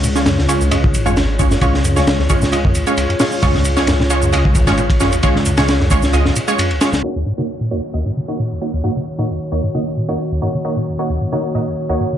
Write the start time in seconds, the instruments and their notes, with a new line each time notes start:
Already playing: detuned saw bass C#2, analog synth pad F4 G#4 C#5
0.04 acid bass A#2, ride, shaker
0.15 synth stab G#3 C#4 F4 C#5, snare, shaker
0.26 acid bass F#2, snare, ride, shaker
0.38 acid bass C#2, snare
0.48 synth stab G#3 C#4 F4 C#5, ride, shaker
0.61 acid bass C#2, shaker
0.71 acid bass F#2, synth stab G#3 C#4 F4 D#5, ride, shaker
0.83 acid bass A#2, kick
0.94 detuned saw bass G#1, ride, shaker
1.06 acid bass F#2, synth stab G#3 C#4 F4 C#5, shaker
1.16 acid bass C#2, snare, ride, shaker
1.39 acid bass C#2, synth stab G#3 C#4 F4 C#5, kick, ride, shaker
1.51 acid bass F#2, snare, shaker
1.61 detuned saw bass C#2, acid bass A#2, synth stab G#3 C#4 F4 C#5, kick, ride, shaker
1.74 snare
1.84 acid bass F#2, ride, shaker
1.96 acid bass C#2, synth stab G#3 C#4 F4 C#5, snare, shaker
2.07 snare, ride, shaker
2.19 acid bass C#2, snare
2.30 acid bass F#2, synth stab G#3 C#4 F4 C#5, kick, ride, shaker
2.41 acid bass A#2, snare, shaker
2.52 synth stab G#3 C#4 F4 D#5, ride, shaker
2.64 acid bass F#2, kick
2.75 acid bass C#2, ride, shaker
2.87 synth stab G#3 C#4 F4 C#5, shaker
2.97 acid bass C#2, ride, shaker
3.09 acid bass F#2, ride
3.20 acid bass A#2, synth stab G#3 C#4 F4 C#5, snare, open hi-hat, shaker
3.32 shaker
3.42 detuned saw bass C#2, acid bass F#2, synth stab G#3 C#4 F4 C#5, kick, ride, shaker
3.55 acid bass C#2, snare
3.65 ride, shaker
3.76 acid bass C#2, synth stab G#3 C#4 F4 C#5, snare, shaker
3.87 acid bass F#2, snare, ride, shaker
3.99 acid bass A#2, snare
4.10 synth stab G#3 C#4 F4 C#5, ride, shaker
4.22 acid bass F#2, shaker
4.32 acid bass C#2, synth stab G#3 C#4 F4 D#5, ride, shaker
4.45 kick
4.55 detuned saw bass G#1, acid bass C#2, kick, ride, shaker
4.67 acid bass F#2, synth stab G#3 C#4 F4 C#5, snare, shaker
4.78 acid bass A#2, ride, shaker
4.90 kick, ride
5.00 acid bass F#2, synth stab G#3 C#4 F4 C#5, snare, shaker
5.12 acid bass C#2, ride, shaker
5.23 detuned saw bass C#2, synth stab G#3 C#4 F4 C#5, kick, ride, shaker
5.36 acid bass C#2, snare
5.45 acid bass F#2, ride, shaker
5.57 acid bass A#2, synth stab G#3 C#4 F4 C#5, snare, ride, shaker
5.68 snare, ride, shaker
5.80 acid bass F#2, snare
5.90 acid bass C#2, synth stab G#3 C#4 F4 C#5, kick, ride, shaker
6.02 snare, shaker
6.13 acid bass C#2, synth stab G#3 C#4 F4 D#5, ride, shaker
6.25 acid bass F#2, snare
6.36 acid bass A#2, ride, shaker
6.48 synth stab G#3 C#4 F4 C#5, shaker
6.59 acid bass F#2, ride, shaker
6.71 acid bass C#2, ride
6.81 synth stab G#3 C#4 F4 C#5, snare, ride, shaker
6.93 detuned saw bass C#2, acid bass C#2, snare, ride, shaker
7.02 analog synth pad D#3 A#3 F#4 C#5, synth stab A#3 D#4 F#4 C#5, downlifter
7.16 acid bass D#2
7.26 acid bass G#2
7.38 acid bass C#3, synth stab A#3 D#4 F#4 C#5
7.61 acid bass A#2
7.71 acid bass D#2, synth stab A#3 D#4 F#4 C#5
7.94 acid bass D#2, synth stab A#3 D#4 F#4 D#5
8.06 acid bass G#2
8.17 acid bass C#3
8.28 synth stab A#3 D#4 F#4 C#5
8.39 acid bass A#2
8.51 acid bass D#2
8.61 synth stab A#3 D#4 F#4 C#5
8.74 acid bass D#2
8.84 acid bass G#2, synth stab A#3 D#4 F#4 C#5
8.96 acid bass C#3
9.19 acid bass A#2, synth stab A#3 D#4 F#4 C#5
9.30 acid bass D#2
9.52 acid bass D#2, synth stab A#3 D#4 F#4 C#5
9.64 acid bass G#2
9.74 acid bass C#3, synth stab A#3 D#4 F#4 D#5
9.97 acid bass A#2
10.09 acid bass D#2, synth stab A#3 D#4 F#4 C#5
10.32 acid bass D#2
10.42 acid bass G#2, synth stab A#3 D#4 F#4 C#5
10.54 acid bass C#3
10.64 synth stab A#3 D#4 F#4 C#5
10.77 acid bass A#2
10.87 acid bass D#2
10.99 synth stab A#3 D#4 F#4 C#5
11.10 acid bass D#2
11.21 acid bass G#2
11.32 acid bass C#3, synth stab A#3 D#4 F#4 C#5
11.55 acid bass A#2, synth stab A#3 D#4 F#4 D#5
11.66 acid bass D#2
11.89 acid bass D#2, synth stab A#3 D#4 F#4 C#5
12.00 acid bass G#2
12.12 acid bass C#3